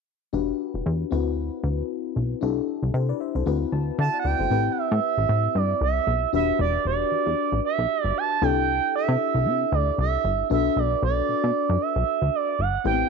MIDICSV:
0, 0, Header, 1, 4, 480
1, 0, Start_track
1, 0, Key_signature, 1, "minor"
1, 0, Tempo, 521739
1, 305, Time_signature, 4, 2, 24, 8
1, 12043, End_track
2, 0, Start_track
2, 0, Title_t, "Analog synth lead"
2, 0, Program_c, 0, 81
2, 3677, Note_on_c, 0, 81, 105
2, 3841, Note_off_c, 0, 81, 0
2, 3859, Note_on_c, 0, 78, 75
2, 3920, Note_on_c, 0, 79, 117
2, 3934, Note_off_c, 0, 78, 0
2, 4342, Note_on_c, 0, 78, 80
2, 4356, Note_off_c, 0, 79, 0
2, 4402, Note_on_c, 0, 76, 108
2, 4415, Note_off_c, 0, 78, 0
2, 5125, Note_on_c, 0, 74, 96
2, 5139, Note_off_c, 0, 76, 0
2, 5355, Note_off_c, 0, 74, 0
2, 5366, Note_on_c, 0, 76, 99
2, 5802, Note_off_c, 0, 76, 0
2, 5844, Note_on_c, 0, 76, 102
2, 6058, Note_off_c, 0, 76, 0
2, 6082, Note_on_c, 0, 74, 95
2, 6297, Note_off_c, 0, 74, 0
2, 6319, Note_on_c, 0, 74, 97
2, 6995, Note_off_c, 0, 74, 0
2, 7039, Note_on_c, 0, 76, 98
2, 7388, Note_off_c, 0, 76, 0
2, 7388, Note_on_c, 0, 74, 98
2, 7523, Note_on_c, 0, 81, 108
2, 7537, Note_off_c, 0, 74, 0
2, 7757, Note_on_c, 0, 79, 119
2, 7771, Note_off_c, 0, 81, 0
2, 8231, Note_off_c, 0, 79, 0
2, 8238, Note_on_c, 0, 76, 105
2, 8961, Note_on_c, 0, 74, 95
2, 8975, Note_off_c, 0, 76, 0
2, 9193, Note_off_c, 0, 74, 0
2, 9201, Note_on_c, 0, 76, 93
2, 9640, Note_off_c, 0, 76, 0
2, 9683, Note_on_c, 0, 76, 91
2, 9923, Note_on_c, 0, 74, 86
2, 9937, Note_off_c, 0, 76, 0
2, 10150, Note_off_c, 0, 74, 0
2, 10155, Note_on_c, 0, 74, 100
2, 10874, Note_on_c, 0, 76, 88
2, 10887, Note_off_c, 0, 74, 0
2, 11362, Note_on_c, 0, 74, 93
2, 11376, Note_off_c, 0, 76, 0
2, 11597, Note_on_c, 0, 78, 95
2, 11611, Note_off_c, 0, 74, 0
2, 11831, Note_off_c, 0, 78, 0
2, 11837, Note_on_c, 0, 79, 91
2, 12043, Note_off_c, 0, 79, 0
2, 12043, End_track
3, 0, Start_track
3, 0, Title_t, "FM electric piano"
3, 0, Program_c, 1, 5
3, 301, Note_on_c, 1, 62, 67
3, 304, Note_on_c, 1, 66, 62
3, 307, Note_on_c, 1, 67, 58
3, 309, Note_on_c, 1, 71, 68
3, 1018, Note_off_c, 1, 66, 0
3, 1018, Note_on_c, 1, 60, 69
3, 1023, Note_off_c, 1, 62, 0
3, 1025, Note_on_c, 1, 64, 58
3, 1026, Note_off_c, 1, 67, 0
3, 1027, Note_off_c, 1, 71, 0
3, 1029, Note_on_c, 1, 66, 71
3, 1036, Note_on_c, 1, 71, 72
3, 2197, Note_off_c, 1, 60, 0
3, 2200, Note_off_c, 1, 64, 0
3, 2203, Note_off_c, 1, 66, 0
3, 2206, Note_off_c, 1, 71, 0
3, 2218, Note_on_c, 1, 62, 73
3, 2224, Note_on_c, 1, 64, 64
3, 2229, Note_on_c, 1, 67, 60
3, 2233, Note_on_c, 1, 69, 79
3, 2699, Note_off_c, 1, 69, 0
3, 2711, Note_on_c, 1, 72, 60
3, 2715, Note_on_c, 1, 69, 50
3, 2835, Note_off_c, 1, 72, 0
3, 2838, Note_off_c, 1, 69, 0
3, 2844, Note_on_c, 1, 74, 72
3, 2848, Note_on_c, 1, 71, 64
3, 2942, Note_off_c, 1, 74, 0
3, 2944, Note_off_c, 1, 71, 0
3, 2948, Note_on_c, 1, 76, 60
3, 2954, Note_on_c, 1, 72, 53
3, 3073, Note_off_c, 1, 72, 0
3, 3074, Note_off_c, 1, 76, 0
3, 3084, Note_on_c, 1, 72, 65
3, 3088, Note_on_c, 1, 69, 53
3, 3162, Note_off_c, 1, 62, 0
3, 3165, Note_off_c, 1, 64, 0
3, 3168, Note_off_c, 1, 67, 0
3, 3181, Note_on_c, 1, 60, 65
3, 3186, Note_on_c, 1, 64, 67
3, 3191, Note_on_c, 1, 66, 72
3, 3197, Note_on_c, 1, 71, 82
3, 3310, Note_off_c, 1, 72, 0
3, 3312, Note_off_c, 1, 69, 0
3, 3426, Note_on_c, 1, 81, 76
3, 3649, Note_off_c, 1, 81, 0
3, 3661, Note_off_c, 1, 71, 0
3, 3666, Note_on_c, 1, 76, 72
3, 3668, Note_on_c, 1, 81, 63
3, 3673, Note_on_c, 1, 78, 47
3, 3791, Note_off_c, 1, 78, 0
3, 3794, Note_off_c, 1, 81, 0
3, 3802, Note_on_c, 1, 78, 60
3, 3808, Note_on_c, 1, 74, 50
3, 3895, Note_off_c, 1, 74, 0
3, 3901, Note_off_c, 1, 78, 0
3, 3906, Note_on_c, 1, 74, 75
3, 3910, Note_on_c, 1, 71, 57
3, 4033, Note_off_c, 1, 74, 0
3, 4035, Note_off_c, 1, 71, 0
3, 4039, Note_on_c, 1, 72, 62
3, 4045, Note_on_c, 1, 69, 50
3, 4112, Note_off_c, 1, 76, 0
3, 4123, Note_off_c, 1, 60, 0
3, 4126, Note_off_c, 1, 64, 0
3, 4129, Note_off_c, 1, 66, 0
3, 4141, Note_on_c, 1, 60, 63
3, 4147, Note_on_c, 1, 64, 52
3, 4150, Note_on_c, 1, 67, 56
3, 4156, Note_on_c, 1, 71, 78
3, 4267, Note_off_c, 1, 72, 0
3, 4270, Note_off_c, 1, 69, 0
3, 5789, Note_off_c, 1, 60, 0
3, 5792, Note_off_c, 1, 64, 0
3, 5794, Note_off_c, 1, 67, 0
3, 5797, Note_off_c, 1, 71, 0
3, 5821, Note_on_c, 1, 62, 73
3, 5828, Note_on_c, 1, 66, 67
3, 5830, Note_on_c, 1, 67, 71
3, 5837, Note_on_c, 1, 71, 83
3, 7706, Note_off_c, 1, 62, 0
3, 7709, Note_off_c, 1, 66, 0
3, 7711, Note_off_c, 1, 67, 0
3, 7714, Note_off_c, 1, 71, 0
3, 7743, Note_on_c, 1, 62, 66
3, 7747, Note_on_c, 1, 64, 61
3, 7751, Note_on_c, 1, 67, 63
3, 7756, Note_on_c, 1, 69, 86
3, 9627, Note_off_c, 1, 62, 0
3, 9629, Note_off_c, 1, 64, 0
3, 9631, Note_off_c, 1, 67, 0
3, 9633, Note_off_c, 1, 69, 0
3, 9658, Note_on_c, 1, 62, 78
3, 9664, Note_on_c, 1, 66, 64
3, 9669, Note_on_c, 1, 69, 59
3, 9674, Note_on_c, 1, 71, 80
3, 11545, Note_off_c, 1, 62, 0
3, 11547, Note_off_c, 1, 66, 0
3, 11550, Note_off_c, 1, 69, 0
3, 11552, Note_off_c, 1, 71, 0
3, 11815, Note_on_c, 1, 59, 47
3, 11820, Note_on_c, 1, 64, 61
3, 11824, Note_on_c, 1, 67, 56
3, 11830, Note_on_c, 1, 71, 65
3, 11874, Note_on_c, 1, 60, 64
3, 11884, Note_off_c, 1, 59, 0
3, 12043, Note_off_c, 1, 60, 0
3, 12043, Note_off_c, 1, 64, 0
3, 12043, Note_off_c, 1, 67, 0
3, 12043, Note_off_c, 1, 71, 0
3, 12043, End_track
4, 0, Start_track
4, 0, Title_t, "Analog synth bass"
4, 0, Program_c, 2, 38
4, 306, Note_on_c, 2, 28, 100
4, 482, Note_off_c, 2, 28, 0
4, 683, Note_on_c, 2, 28, 94
4, 759, Note_off_c, 2, 28, 0
4, 790, Note_on_c, 2, 40, 105
4, 964, Note_off_c, 2, 40, 0
4, 1029, Note_on_c, 2, 38, 96
4, 1380, Note_off_c, 2, 38, 0
4, 1504, Note_on_c, 2, 38, 95
4, 1680, Note_off_c, 2, 38, 0
4, 1987, Note_on_c, 2, 35, 88
4, 2163, Note_off_c, 2, 35, 0
4, 2227, Note_on_c, 2, 36, 99
4, 2402, Note_off_c, 2, 36, 0
4, 2599, Note_on_c, 2, 36, 95
4, 2677, Note_off_c, 2, 36, 0
4, 2704, Note_on_c, 2, 48, 96
4, 2880, Note_off_c, 2, 48, 0
4, 3082, Note_on_c, 2, 36, 88
4, 3159, Note_off_c, 2, 36, 0
4, 3186, Note_on_c, 2, 38, 107
4, 3362, Note_off_c, 2, 38, 0
4, 3426, Note_on_c, 2, 38, 88
4, 3601, Note_off_c, 2, 38, 0
4, 3667, Note_on_c, 2, 50, 98
4, 3765, Note_off_c, 2, 50, 0
4, 3906, Note_on_c, 2, 38, 80
4, 4004, Note_off_c, 2, 38, 0
4, 4043, Note_on_c, 2, 31, 85
4, 4119, Note_off_c, 2, 31, 0
4, 4146, Note_on_c, 2, 33, 100
4, 4322, Note_off_c, 2, 33, 0
4, 4520, Note_on_c, 2, 45, 108
4, 4597, Note_off_c, 2, 45, 0
4, 4761, Note_on_c, 2, 33, 89
4, 4838, Note_off_c, 2, 33, 0
4, 4867, Note_on_c, 2, 45, 101
4, 5043, Note_off_c, 2, 45, 0
4, 5107, Note_on_c, 2, 43, 106
4, 5282, Note_off_c, 2, 43, 0
4, 5345, Note_on_c, 2, 36, 96
4, 5521, Note_off_c, 2, 36, 0
4, 5584, Note_on_c, 2, 35, 92
4, 5760, Note_off_c, 2, 35, 0
4, 5824, Note_on_c, 2, 28, 97
4, 6001, Note_off_c, 2, 28, 0
4, 6064, Note_on_c, 2, 28, 124
4, 6240, Note_off_c, 2, 28, 0
4, 6304, Note_on_c, 2, 28, 97
4, 6480, Note_off_c, 2, 28, 0
4, 6546, Note_on_c, 2, 40, 48
4, 6599, Note_off_c, 2, 40, 0
4, 6681, Note_on_c, 2, 40, 82
4, 6757, Note_off_c, 2, 40, 0
4, 6921, Note_on_c, 2, 33, 99
4, 6998, Note_off_c, 2, 33, 0
4, 7160, Note_on_c, 2, 35, 93
4, 7237, Note_off_c, 2, 35, 0
4, 7400, Note_on_c, 2, 31, 84
4, 7477, Note_off_c, 2, 31, 0
4, 7744, Note_on_c, 2, 36, 115
4, 8097, Note_off_c, 2, 36, 0
4, 8357, Note_on_c, 2, 48, 103
4, 8435, Note_off_c, 2, 48, 0
4, 8596, Note_on_c, 2, 36, 85
4, 8700, Note_on_c, 2, 48, 104
4, 8713, Note_off_c, 2, 36, 0
4, 8878, Note_off_c, 2, 48, 0
4, 8942, Note_on_c, 2, 38, 105
4, 9119, Note_off_c, 2, 38, 0
4, 9184, Note_on_c, 2, 36, 100
4, 9361, Note_off_c, 2, 36, 0
4, 9424, Note_on_c, 2, 31, 96
4, 9600, Note_off_c, 2, 31, 0
4, 9665, Note_on_c, 2, 35, 98
4, 9841, Note_off_c, 2, 35, 0
4, 9902, Note_on_c, 2, 35, 109
4, 10079, Note_off_c, 2, 35, 0
4, 10143, Note_on_c, 2, 35, 103
4, 10320, Note_off_c, 2, 35, 0
4, 10384, Note_on_c, 2, 47, 48
4, 10438, Note_off_c, 2, 47, 0
4, 10520, Note_on_c, 2, 47, 85
4, 10597, Note_off_c, 2, 47, 0
4, 10758, Note_on_c, 2, 42, 98
4, 10836, Note_off_c, 2, 42, 0
4, 10999, Note_on_c, 2, 35, 100
4, 11076, Note_off_c, 2, 35, 0
4, 11238, Note_on_c, 2, 38, 86
4, 11316, Note_off_c, 2, 38, 0
4, 11582, Note_on_c, 2, 31, 90
4, 11759, Note_off_c, 2, 31, 0
4, 11823, Note_on_c, 2, 33, 108
4, 12000, Note_off_c, 2, 33, 0
4, 12043, End_track
0, 0, End_of_file